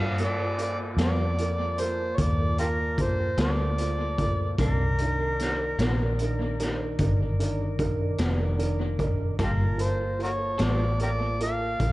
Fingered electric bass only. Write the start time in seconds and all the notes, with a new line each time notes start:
Already playing: G2
0.96 F2
2.18 D#2
3.38 D2
4.58 C2
5.78 A#1
6.99 G1
8.19 F1
9.39 G1
10.60 A1
11.80 A#1